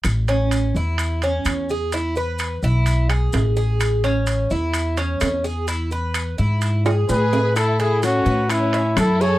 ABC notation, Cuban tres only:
X:1
M:4/4
L:1/8
Q:1/4=128
K:A
V:1 name="Cuban tres"
z C2 E2 C2 G | E B2 E2 G2 G- | G C2 E2 C2 G | E B2 E2 G2 B |
z A2 B2 e2 G |]